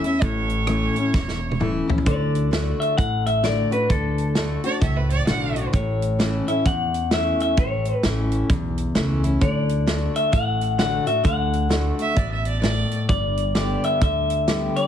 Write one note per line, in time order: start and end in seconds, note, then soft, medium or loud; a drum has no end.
0.00 0.18 E2 medium
0.00 0.21 E4 soft
0.04 0.22 C#4 soft
0.04 0.25 E5 medium
0.04 closed hi-hat medium
0.21 0.87 A1 medium
0.21 1.11 A2 medium
0.21 1.61 C#5 medium
0.21 kick loud
0.21 closed hi-hat medium
0.50 closed hi-hat medium
0.67 0.95 E3 medium
0.67 0.96 A3 medium
0.67 0.96 C#4 medium
0.67 0.95 E4 medium
0.67 cross-stick loud
0.67 closed hi-hat medium
0.96 1.14 C#4 soft
0.96 1.13 E4 medium
0.96 closed hi-hat medium
1.14 1.79 E1 medium
1.14 2.02 E2 medium
1.14 kick loud
1.14 snare medium
1.28 snare soft
1.52 high tom medium
1.60 1.87 E3 medium
1.60 1.88 A3 medium
1.60 1.88 C#4 medium
1.60 1.86 E4 medium
1.60 mid tom medium
1.88 2.06 C#4 soft
1.88 2.05 E4 soft
1.88 floor tom medium
1.98 floor tom medium
2.06 2.71 D2 medium
2.06 2.50 D3 loud
2.06 2.83 D5 medium
2.06 kick loud
2.06 closed hi-hat medium
2.35 closed hi-hat medium
2.51 2.96 D3 medium
2.51 2.96 A3 medium
2.51 2.96 D4 medium
2.51 2.97 F#4 medium
2.51 snare loud
2.51 closed hi-hat medium
2.80 2.97 E5 medium
2.80 closed hi-hat medium
2.98 3.63 A1 medium
2.98 3.86 A2 medium
2.98 3.26 F#5 loud
2.98 kick medium
2.98 closed hi-hat medium
3.26 3.45 E5 medium
3.26 closed hi-hat medium
3.43 3.71 D3 medium
3.43 3.71 A3 medium
3.43 3.72 D4 medium
3.43 3.70 F#4 medium
3.43 3.72 D5 loud
3.43 snare medium
3.43 closed hi-hat medium
3.71 3.90 D4 soft
3.71 3.89 F#4 medium
3.71 3.91 B4 medium
3.71 closed hi-hat medium
3.90 4.55 D2 medium
3.90 4.35 D3 medium
3.90 4.78 A4 medium
3.90 kick loud
3.90 closed hi-hat medium
4.18 closed hi-hat medium
4.35 4.63 D3 medium
4.35 4.63 A3 medium
4.35 4.64 D4 medium
4.35 4.63 F#4 medium
4.35 snare medium
4.35 closed hi-hat medium
4.64 4.82 D4 medium
4.64 4.81 F#4 medium
4.64 4.81 D5 loud
4.64 closed hi-hat medium
4.81 5.21 C#2 medium
4.81 5.70 A2 medium
4.81 4.98 E5 medium
4.81 kick loud
4.81 closed hi-hat medium
4.97 5.11 B4 medium
5.10 5.26 D5 medium
5.10 closed hi-hat medium
5.27 5.67 B1 medium
5.27 5.55 D3 medium
5.27 5.55 A3 medium
5.27 5.55 D4 medium
5.27 5.55 F#4 medium
5.27 5.63 F#5 loud
5.27 snare medium
5.27 closed hi-hat medium
5.56 5.74 D4 soft
5.56 5.73 F#4 soft
5.56 closed hi-hat medium
5.73 6.39 A1 medium
5.73 6.62 A2 medium
5.73 6.50 C#5 medium
5.73 kick loud
5.73 closed hi-hat medium
6.02 closed hi-hat medium
6.19 6.46 E3 medium
6.19 6.47 A3 medium
6.19 6.47 C#4 medium
6.19 6.46 E4 medium
6.19 snare loud
6.19 closed hi-hat medium
6.48 6.66 C#4 soft
6.48 6.65 E4 medium
6.48 6.65 E5 medium
6.48 closed hi-hat medium
6.66 7.31 E2 medium
6.66 7.54 E2 medium
6.66 7.09 F#5 loud
6.66 kick loud
6.66 closed hi-hat medium
6.94 closed hi-hat medium
7.11 7.56 E3 medium
7.11 7.56 A3 medium
7.11 7.57 C#4 medium
7.11 7.57 E4 medium
7.11 7.40 E5 loud
7.11 snare loud
7.11 closed hi-hat medium
7.40 7.59 E5 medium
7.40 closed hi-hat medium
7.57 7.90 A1 medium
7.57 8.46 A2 medium
7.57 8.01 C#5 medium
7.57 kick loud
7.57 closed hi-hat medium
7.85 closed hi-hat medium
8.03 8.43 A1 medium
8.03 8.48 E3 medium
8.03 8.48 A3 medium
8.03 8.48 C#4 medium
8.03 8.49 E4 medium
8.03 snare loud
8.03 closed hi-hat medium
8.32 closed hi-hat soft
8.49 8.89 B1 medium
8.49 9.38 E2 medium
8.49 kick loud
8.49 closed hi-hat medium
8.78 closed hi-hat medium
8.95 9.34 C#2 medium
8.95 9.22 E3 medium
8.95 9.23 A3 medium
8.95 9.23 C#4 medium
8.95 9.22 E4 medium
8.95 snare loud
8.95 closed hi-hat medium
9.23 9.42 C#4 soft
9.23 9.41 E4 soft
9.23 closed hi-hat medium
9.41 10.06 D2 medium
9.41 9.85 D3 medium
9.41 10.18 D5 medium
9.41 kick loud
9.41 closed hi-hat medium
9.69 closed hi-hat medium
9.86 10.31 D3 medium
9.86 10.32 A3 medium
9.86 10.32 D4 medium
9.86 10.32 F#4 medium
9.86 snare loud
9.86 closed hi-hat medium
10.16 10.32 E5 medium
10.16 closed hi-hat medium
10.32 10.98 A1 medium
10.32 11.21 A2 medium
10.32 10.78 F#5 loud
10.32 kick loud
10.32 closed hi-hat medium
10.61 closed hi-hat medium
10.78 11.06 D3 medium
10.78 11.06 A3 medium
10.78 11.07 D4 medium
10.78 11.05 F#4 medium
10.78 11.07 F#5 loud
10.78 snare loud
10.78 closed hi-hat medium
11.06 11.25 D4 soft
11.06 11.24 F#4 medium
11.06 11.25 E5 medium
11.06 closed hi-hat medium
11.24 11.90 D2 medium
11.24 11.68 D3 medium
11.24 12.13 F#5 medium
11.24 kick loud
11.24 closed hi-hat medium
11.53 closed hi-hat soft
11.69 12.14 D3 medium
11.69 12.15 A3 medium
11.69 12.15 D4 medium
11.69 12.16 F#4 medium
11.69 snare medium
11.69 closed hi-hat medium
11.99 12.19 E5 loud
11.99 closed hi-hat medium
12.16 12.82 A1 medium
12.16 12.61 B2 medium
12.16 12.31 D5 medium
12.16 kick medium
12.16 closed hi-hat medium
12.32 12.47 E5 medium
12.45 12.61 D5 medium
12.45 closed hi-hat medium
12.61 13.07 A2 medium
12.61 12.98 D5 loud
12.61 snare loud
12.61 closed hi-hat medium
12.91 closed hi-hat medium
13.09 13.74 G1 medium
13.09 13.98 G2 loud
13.09 13.55 D5 medium
13.09 kick loud
13.09 closed hi-hat medium
13.37 closed hi-hat medium
13.55 13.99 D3 medium
13.55 14.00 G3 medium
13.55 14.00 B3 medium
13.55 14.00 G4 medium
13.55 13.84 D5 medium
13.55 snare medium
13.55 closed hi-hat medium
13.84 14.01 E5 loud
13.84 closed hi-hat medium
14.01 14.66 D2 medium
14.01 14.46 D3 medium
14.01 14.76 E5 loud
14.01 kick loud
14.01 closed hi-hat medium
14.30 closed hi-hat medium
14.48 14.87 D3 medium
14.48 14.87 G3 medium
14.48 14.87 B3 medium
14.48 14.87 G4 medium
14.48 snare loud
14.48 closed hi-hat medium
14.76 14.87 D5 medium
14.76 closed hi-hat medium